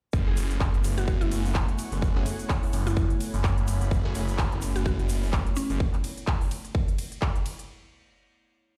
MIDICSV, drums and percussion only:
0, 0, Header, 1, 2, 480
1, 0, Start_track
1, 0, Key_signature, 3, "minor"
1, 0, Tempo, 472441
1, 135, Time_signature, 4, 2, 24, 8
1, 8910, End_track
2, 0, Start_track
2, 0, Title_t, "Drums"
2, 132, Note_on_c, 9, 82, 39
2, 135, Note_on_c, 9, 36, 124
2, 233, Note_off_c, 9, 82, 0
2, 236, Note_off_c, 9, 36, 0
2, 373, Note_on_c, 9, 82, 87
2, 376, Note_on_c, 9, 46, 106
2, 376, Note_on_c, 9, 51, 77
2, 474, Note_off_c, 9, 82, 0
2, 478, Note_off_c, 9, 46, 0
2, 478, Note_off_c, 9, 51, 0
2, 512, Note_on_c, 9, 82, 49
2, 514, Note_on_c, 9, 42, 69
2, 613, Note_off_c, 9, 82, 0
2, 614, Note_on_c, 9, 39, 126
2, 615, Note_off_c, 9, 42, 0
2, 615, Note_on_c, 9, 36, 119
2, 617, Note_on_c, 9, 82, 42
2, 716, Note_off_c, 9, 36, 0
2, 716, Note_off_c, 9, 39, 0
2, 719, Note_off_c, 9, 82, 0
2, 753, Note_on_c, 9, 42, 41
2, 853, Note_on_c, 9, 82, 100
2, 855, Note_off_c, 9, 42, 0
2, 857, Note_on_c, 9, 46, 105
2, 857, Note_on_c, 9, 51, 79
2, 955, Note_off_c, 9, 82, 0
2, 959, Note_off_c, 9, 46, 0
2, 959, Note_off_c, 9, 51, 0
2, 993, Note_on_c, 9, 42, 69
2, 993, Note_on_c, 9, 82, 52
2, 1090, Note_off_c, 9, 82, 0
2, 1090, Note_on_c, 9, 82, 39
2, 1095, Note_off_c, 9, 42, 0
2, 1095, Note_on_c, 9, 36, 121
2, 1192, Note_off_c, 9, 82, 0
2, 1196, Note_off_c, 9, 36, 0
2, 1233, Note_on_c, 9, 42, 56
2, 1335, Note_off_c, 9, 42, 0
2, 1336, Note_on_c, 9, 46, 110
2, 1336, Note_on_c, 9, 51, 78
2, 1341, Note_on_c, 9, 82, 91
2, 1438, Note_off_c, 9, 46, 0
2, 1438, Note_off_c, 9, 51, 0
2, 1443, Note_off_c, 9, 82, 0
2, 1473, Note_on_c, 9, 46, 64
2, 1477, Note_on_c, 9, 82, 52
2, 1573, Note_on_c, 9, 39, 127
2, 1575, Note_off_c, 9, 46, 0
2, 1575, Note_on_c, 9, 36, 125
2, 1576, Note_off_c, 9, 82, 0
2, 1576, Note_on_c, 9, 82, 42
2, 1675, Note_off_c, 9, 39, 0
2, 1677, Note_off_c, 9, 36, 0
2, 1677, Note_off_c, 9, 82, 0
2, 1711, Note_on_c, 9, 42, 52
2, 1813, Note_off_c, 9, 42, 0
2, 1814, Note_on_c, 9, 82, 97
2, 1815, Note_on_c, 9, 46, 107
2, 1815, Note_on_c, 9, 51, 81
2, 1916, Note_off_c, 9, 46, 0
2, 1916, Note_off_c, 9, 51, 0
2, 1916, Note_off_c, 9, 82, 0
2, 1952, Note_on_c, 9, 42, 70
2, 1961, Note_on_c, 9, 82, 50
2, 2053, Note_off_c, 9, 42, 0
2, 2055, Note_on_c, 9, 36, 127
2, 2057, Note_off_c, 9, 82, 0
2, 2057, Note_on_c, 9, 82, 39
2, 2157, Note_off_c, 9, 36, 0
2, 2158, Note_off_c, 9, 82, 0
2, 2189, Note_on_c, 9, 39, 40
2, 2291, Note_off_c, 9, 39, 0
2, 2295, Note_on_c, 9, 46, 109
2, 2295, Note_on_c, 9, 51, 74
2, 2297, Note_on_c, 9, 82, 87
2, 2397, Note_off_c, 9, 46, 0
2, 2397, Note_off_c, 9, 51, 0
2, 2398, Note_off_c, 9, 82, 0
2, 2432, Note_on_c, 9, 42, 68
2, 2432, Note_on_c, 9, 82, 51
2, 2531, Note_off_c, 9, 82, 0
2, 2531, Note_on_c, 9, 82, 38
2, 2533, Note_off_c, 9, 42, 0
2, 2533, Note_on_c, 9, 39, 125
2, 2535, Note_on_c, 9, 36, 124
2, 2633, Note_off_c, 9, 82, 0
2, 2635, Note_off_c, 9, 39, 0
2, 2637, Note_off_c, 9, 36, 0
2, 2672, Note_on_c, 9, 46, 66
2, 2773, Note_off_c, 9, 46, 0
2, 2773, Note_on_c, 9, 82, 91
2, 2776, Note_on_c, 9, 46, 103
2, 2776, Note_on_c, 9, 51, 77
2, 2875, Note_off_c, 9, 82, 0
2, 2877, Note_off_c, 9, 46, 0
2, 2877, Note_off_c, 9, 51, 0
2, 2912, Note_on_c, 9, 42, 71
2, 2917, Note_on_c, 9, 82, 57
2, 3013, Note_off_c, 9, 82, 0
2, 3013, Note_on_c, 9, 82, 42
2, 3014, Note_off_c, 9, 42, 0
2, 3015, Note_on_c, 9, 36, 127
2, 3115, Note_off_c, 9, 82, 0
2, 3117, Note_off_c, 9, 36, 0
2, 3152, Note_on_c, 9, 42, 55
2, 3254, Note_off_c, 9, 42, 0
2, 3256, Note_on_c, 9, 46, 109
2, 3256, Note_on_c, 9, 51, 75
2, 3261, Note_on_c, 9, 82, 95
2, 3357, Note_off_c, 9, 46, 0
2, 3357, Note_off_c, 9, 51, 0
2, 3362, Note_off_c, 9, 82, 0
2, 3393, Note_on_c, 9, 42, 70
2, 3395, Note_on_c, 9, 82, 59
2, 3493, Note_on_c, 9, 39, 125
2, 3494, Note_off_c, 9, 42, 0
2, 3495, Note_on_c, 9, 36, 120
2, 3496, Note_off_c, 9, 82, 0
2, 3498, Note_on_c, 9, 82, 42
2, 3595, Note_off_c, 9, 39, 0
2, 3597, Note_off_c, 9, 36, 0
2, 3599, Note_off_c, 9, 82, 0
2, 3633, Note_on_c, 9, 42, 52
2, 3732, Note_on_c, 9, 82, 102
2, 3734, Note_off_c, 9, 42, 0
2, 3737, Note_on_c, 9, 46, 111
2, 3737, Note_on_c, 9, 51, 77
2, 3834, Note_off_c, 9, 82, 0
2, 3839, Note_off_c, 9, 46, 0
2, 3839, Note_off_c, 9, 51, 0
2, 3870, Note_on_c, 9, 82, 57
2, 3874, Note_on_c, 9, 42, 68
2, 3971, Note_off_c, 9, 82, 0
2, 3975, Note_on_c, 9, 36, 127
2, 3976, Note_off_c, 9, 42, 0
2, 3984, Note_on_c, 9, 82, 43
2, 4077, Note_off_c, 9, 36, 0
2, 4085, Note_off_c, 9, 82, 0
2, 4213, Note_on_c, 9, 82, 96
2, 4218, Note_on_c, 9, 46, 110
2, 4218, Note_on_c, 9, 51, 76
2, 4315, Note_off_c, 9, 82, 0
2, 4319, Note_off_c, 9, 46, 0
2, 4319, Note_off_c, 9, 51, 0
2, 4353, Note_on_c, 9, 82, 51
2, 4354, Note_on_c, 9, 42, 63
2, 4449, Note_off_c, 9, 82, 0
2, 4449, Note_on_c, 9, 82, 41
2, 4454, Note_on_c, 9, 39, 122
2, 4455, Note_off_c, 9, 42, 0
2, 4455, Note_on_c, 9, 36, 125
2, 4550, Note_off_c, 9, 82, 0
2, 4556, Note_off_c, 9, 39, 0
2, 4557, Note_off_c, 9, 36, 0
2, 4594, Note_on_c, 9, 42, 38
2, 4689, Note_on_c, 9, 82, 97
2, 4696, Note_off_c, 9, 42, 0
2, 4697, Note_on_c, 9, 46, 108
2, 4697, Note_on_c, 9, 51, 76
2, 4790, Note_off_c, 9, 82, 0
2, 4798, Note_off_c, 9, 46, 0
2, 4798, Note_off_c, 9, 51, 0
2, 4833, Note_on_c, 9, 82, 55
2, 4834, Note_on_c, 9, 42, 64
2, 4932, Note_off_c, 9, 82, 0
2, 4932, Note_on_c, 9, 82, 42
2, 4935, Note_off_c, 9, 42, 0
2, 4935, Note_on_c, 9, 36, 127
2, 5034, Note_off_c, 9, 82, 0
2, 5037, Note_off_c, 9, 36, 0
2, 5073, Note_on_c, 9, 42, 54
2, 5170, Note_on_c, 9, 82, 106
2, 5175, Note_off_c, 9, 42, 0
2, 5177, Note_on_c, 9, 46, 110
2, 5177, Note_on_c, 9, 51, 78
2, 5272, Note_off_c, 9, 82, 0
2, 5279, Note_off_c, 9, 46, 0
2, 5279, Note_off_c, 9, 51, 0
2, 5313, Note_on_c, 9, 82, 55
2, 5314, Note_on_c, 9, 46, 68
2, 5411, Note_off_c, 9, 82, 0
2, 5411, Note_on_c, 9, 82, 43
2, 5413, Note_on_c, 9, 39, 125
2, 5415, Note_off_c, 9, 46, 0
2, 5415, Note_on_c, 9, 36, 127
2, 5513, Note_off_c, 9, 82, 0
2, 5515, Note_off_c, 9, 39, 0
2, 5517, Note_off_c, 9, 36, 0
2, 5553, Note_on_c, 9, 42, 51
2, 5648, Note_on_c, 9, 82, 103
2, 5654, Note_off_c, 9, 42, 0
2, 5656, Note_on_c, 9, 46, 116
2, 5656, Note_on_c, 9, 51, 76
2, 5750, Note_off_c, 9, 82, 0
2, 5757, Note_off_c, 9, 46, 0
2, 5757, Note_off_c, 9, 51, 0
2, 5792, Note_on_c, 9, 42, 68
2, 5796, Note_on_c, 9, 82, 57
2, 5894, Note_off_c, 9, 42, 0
2, 5895, Note_on_c, 9, 36, 123
2, 5897, Note_off_c, 9, 82, 0
2, 5997, Note_off_c, 9, 36, 0
2, 6030, Note_on_c, 9, 39, 39
2, 6033, Note_on_c, 9, 42, 37
2, 6132, Note_off_c, 9, 39, 0
2, 6134, Note_off_c, 9, 42, 0
2, 6136, Note_on_c, 9, 46, 111
2, 6136, Note_on_c, 9, 51, 78
2, 6238, Note_off_c, 9, 46, 0
2, 6238, Note_off_c, 9, 51, 0
2, 6274, Note_on_c, 9, 42, 61
2, 6374, Note_on_c, 9, 39, 114
2, 6375, Note_off_c, 9, 42, 0
2, 6375, Note_on_c, 9, 36, 127
2, 6476, Note_off_c, 9, 39, 0
2, 6477, Note_off_c, 9, 36, 0
2, 6514, Note_on_c, 9, 46, 66
2, 6615, Note_off_c, 9, 46, 0
2, 6616, Note_on_c, 9, 46, 110
2, 6616, Note_on_c, 9, 51, 76
2, 6718, Note_off_c, 9, 46, 0
2, 6718, Note_off_c, 9, 51, 0
2, 6753, Note_on_c, 9, 42, 64
2, 6855, Note_off_c, 9, 42, 0
2, 6855, Note_on_c, 9, 36, 127
2, 6957, Note_off_c, 9, 36, 0
2, 6993, Note_on_c, 9, 42, 52
2, 7095, Note_off_c, 9, 42, 0
2, 7096, Note_on_c, 9, 46, 110
2, 7096, Note_on_c, 9, 51, 76
2, 7198, Note_off_c, 9, 46, 0
2, 7198, Note_off_c, 9, 51, 0
2, 7233, Note_on_c, 9, 42, 68
2, 7334, Note_on_c, 9, 39, 121
2, 7335, Note_off_c, 9, 42, 0
2, 7335, Note_on_c, 9, 36, 127
2, 7435, Note_off_c, 9, 39, 0
2, 7437, Note_off_c, 9, 36, 0
2, 7473, Note_on_c, 9, 42, 50
2, 7575, Note_off_c, 9, 42, 0
2, 7576, Note_on_c, 9, 46, 116
2, 7576, Note_on_c, 9, 51, 81
2, 7678, Note_off_c, 9, 46, 0
2, 7678, Note_off_c, 9, 51, 0
2, 7713, Note_on_c, 9, 42, 68
2, 7815, Note_off_c, 9, 42, 0
2, 8910, End_track
0, 0, End_of_file